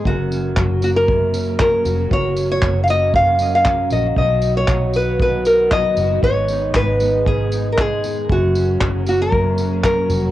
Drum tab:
TB |-x-x-x-x|-x-x-x-x|-x-x-x-x|-x-x-x-x|
CP |--x---x-|--x---x-|--x---x-|--x---x-|
BD |o-o-o-o-|o-o-o-o-|o-o-o-o-|o-o-o-o-|

TB |-x-x-x-x|
CP |--x---x-|
BD |o-o-o-o-|